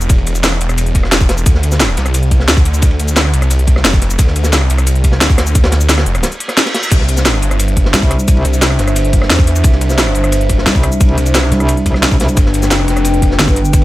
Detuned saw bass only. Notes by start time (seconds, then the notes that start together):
Already playing: E1
0.27 E1
0.61 E1
0.95 E1
1.46 D2
1.97 C2
2.48 D2
2.99 D2
3.34 C2
3.85 F1
4.19 D2
4.70 C2
5.21 D2
5.72 D2
6.06 F1
6.91 C2
7.43 G1
8.45 C2
8.79 G1
9.30 E2
9.64 C2
10.15 G1
11.18 C2
12.37 G1
12.88 F1